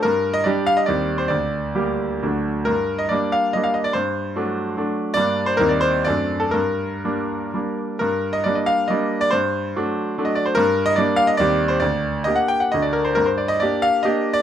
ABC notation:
X:1
M:3/4
L:1/16
Q:1/4=138
K:Gm
V:1 name="Grand piano"
B3 e d2 f e d3 c | d8- d2 z2 | B3 e d2 f2 e f e d | c8- c2 z2 |
d3 c B d c2 d3 A | B8- B2 z2 | B3 e d e f2 e3 d | c8- c e d c |
B3 e d2 f e d3 c | d4 e ^f g f e d B c | B c d e d2 f2 e3 d |]
V:2 name="Grand piano"
G,,4 [G,DG]4 [E,,G,CG]4 | D,,4 [G,B,G]4 [D,,^F,A,D]4 | G,,4 [G,B,D]4 [G,B,D]4 | G,,4 [^F,A,D]4 [F,A,D]4 |
[G,,G,B,D]4 [E,,G,CE]4 [^F,,A,CD]4 | G,,4 [G,B,D]4 [G,B,D]4 | G,,4 [G,B,D]4 [G,B,D]4 | G,,4 [^F,A,D]4 [F,A,D]4 |
G,,4 [G,B,D]4 [E,,G,CG]4 | D,,4 [B,DG]4 [D,,A,D^F]4 | G,,4 [B,DG]4 [B,DG]4 |]